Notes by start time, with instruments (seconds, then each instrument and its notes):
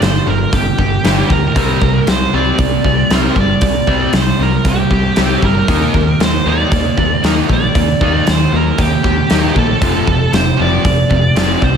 0.01 picked electric bass G1, overdriven electric guitar G2 D3, lead electric guitar C5, snare, open hi-hat
0.27 picked electric bass G1, overdriven electric guitar G2 D3, lead electric guitar A#4
0.53 picked electric bass G1, overdriven electric guitar G2 D3, lead electric guitar G4, kick, open hi-hat
0.78 picked electric bass G1, overdriven electric guitar G2 D3, kick
1.04 picked electric bass G1, overdriven electric guitar G2 D3 G3, snare, open hi-hat
1.30 picked electric bass D2, overdriven electric guitar G2 D3, lead electric guitar A#4, kick
1.56 picked electric bass C2, overdriven electric guitar C3 G3 C4, kick, open hi-hat
1.82 picked electric bass C2, overdriven electric guitar C3 G3, kick
2.07 picked electric bass C2, overdriven electric guitar C3 G3, lead electric guitar C5, snare, open hi-hat
2.33 picked electric bass C2, overdriven electric guitar C3 G3 C4, lead electric guitar D5
2.58 picked electric bass C2, overdriven electric guitar C3 G3, kick, open hi-hat
2.84 picked electric bass C2, overdriven electric guitar C3 G3, kick
3.11 picked electric bass C2, overdriven electric guitar C3 G3 C4, lead electric guitar A#4, snare, open hi-hat
3.36 picked electric bass G1, overdriven electric guitar C3 G3, kick
3.40 lead electric guitar D5
3.61 picked electric bass C2, overdriven electric guitar C3 G3, kick, open hi-hat
3.87 picked electric bass C2, overdriven electric guitar C3 G3 C4, kick
4.13 picked electric bass C2, overdriven electric guitar C3 G3, lead electric guitar C5, snare, open hi-hat
4.39 picked electric bass C2, overdriven electric guitar C3 G3, lead electric guitar A#4
4.65 picked electric bass C2, overdriven electric guitar C3 G3, lead electric guitar G4, kick, open hi-hat
4.91 picked electric bass C2, overdriven electric guitar C3 G3, kick
5.16 picked electric bass C2, overdriven electric guitar C3 G3 C4, snare, open hi-hat
5.42 picked electric bass G1, overdriven electric guitar C3 G3, lead electric guitar A#4, kick
5.68 picked electric bass D#2, overdriven electric guitar D#3 A#3 D#4, kick, open hi-hat
5.94 picked electric bass D#2, overdriven electric guitar D#3 A#3, kick
6.20 picked electric bass D#2, overdriven electric guitar D#3 A#3, lead electric guitar C5, snare, open hi-hat
6.46 picked electric bass D#2, overdriven electric guitar D#3 A#3 D#4, lead electric guitar D5
6.72 picked electric bass D#2, overdriven electric guitar D#3 A#3, kick, open hi-hat
6.97 picked electric bass D#2, overdriven electric guitar D#3 A#3, kick
7.23 picked electric bass D#2, overdriven electric guitar D#3 A#3 D#4, lead electric guitar A#4, snare, open hi-hat
7.49 picked electric bass A#1, overdriven electric guitar D#3 A#3, lead electric guitar D5, kick
7.75 picked electric bass D#2, overdriven electric guitar D#3 A#3, kick, open hi-hat
8.01 picked electric bass D#2, overdriven electric guitar D#3 A#3 D#4, kick
8.27 picked electric bass D#2, overdriven electric guitar D#3 A#3, lead electric guitar C5, snare, open hi-hat
8.53 picked electric bass D#2, overdriven electric guitar D#3 A#3, lead electric guitar A#4
8.78 picked electric bass D#2, overdriven electric guitar D#3 A#3, lead electric guitar G4, kick, open hi-hat
9.04 picked electric bass D#2, overdriven electric guitar D#3 A#3, kick
9.30 picked electric bass D#2, overdriven electric guitar D#3 A#3 D#4, snare, open hi-hat
9.56 picked electric bass A#1, overdriven electric guitar D#3 A#3, lead electric guitar A4, kick
9.82 picked electric bass F1, overdriven electric guitar F2 C3 F3, kick, open hi-hat
10.07 picked electric bass F1, overdriven electric guitar F2 C3, kick
10.33 picked electric bass F1, overdriven electric guitar F2 C3, lead electric guitar C5, snare, open hi-hat
10.59 picked electric bass F1, overdriven electric guitar F2 C3 F3, lead electric guitar D5
10.85 picked electric bass F1, overdriven electric guitar F2 C3, kick, open hi-hat
11.11 picked electric bass F1, overdriven electric guitar F2 C3, kick
11.36 picked electric bass F1, overdriven electric guitar F2 C3 F3, lead electric guitar D5, snare, open hi-hat
11.62 picked electric bass C2, overdriven electric guitar F2 C3, lead electric guitar C5, kick